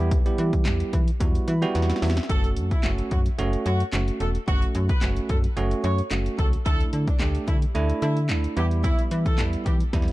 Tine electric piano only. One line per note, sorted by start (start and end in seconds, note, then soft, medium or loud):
0.00 0.17 G3 medium
0.00 0.17 B3 medium
0.00 0.17 E4 medium
0.00 0.17 G4 loud
0.26 1.00 G3 medium
0.26 1.00 B3 medium
0.26 1.00 E4 medium
0.26 1.00 G4 medium
1.20 1.52 G3 medium
1.20 1.52 B3 medium
1.20 1.53 E4 medium
1.20 1.53 F#4 medium
1.48 1.61 B5 medium
1.62 2.15 G3 loud
1.62 2.15 B3 medium
1.62 2.15 E4 medium
1.62 2.15 F#4 loud
1.62 1.74 G5 medium
1.75 2.00 F#5 medium
2.02 2.28 E5 medium
2.29 2.73 A3 medium
2.29 2.73 C#4 medium
2.29 2.73 F#4 medium
2.84 3.27 A3 medium
2.84 3.27 C#4 medium
2.84 3.27 F#4 medium
3.38 3.82 A3 loud
3.38 3.82 C#4 medium
3.38 3.82 F#4 loud
3.93 4.36 A3 medium
3.93 4.36 C#4 medium
3.93 4.36 F#4 medium
4.47 4.91 A3 medium
4.47 4.91 C#4 medium
4.47 4.91 F#4 medium
5.02 5.45 A3 medium
5.02 5.45 C#4 medium
5.02 5.46 F#4 medium
5.57 6.00 A3 medium
5.57 6.00 C#4 medium
5.57 6.00 F#4 loud
6.11 6.54 A3 medium
6.11 6.54 C#4 medium
6.11 6.55 F#4 medium
6.66 7.09 A3 medium
6.66 7.09 D4 medium
6.66 7.09 E4 medium
7.20 7.63 A3 medium
7.20 7.64 D4 medium
7.20 7.64 G4 medium
7.75 8.18 A3 loud
7.75 8.18 D4 medium
7.75 8.18 E4 loud
8.29 8.57 A3 medium
8.29 8.57 D4 medium
8.29 8.56 E4 medium
8.57 9.23 G3 medium
8.57 9.23 B3 medium
8.57 9.23 E4 medium
9.38 9.82 G3 medium
9.38 9.82 B3 medium
9.38 9.82 E4 medium
9.93 10.12 G3 medium
9.93 10.12 B3 medium
9.93 10.12 E4 loud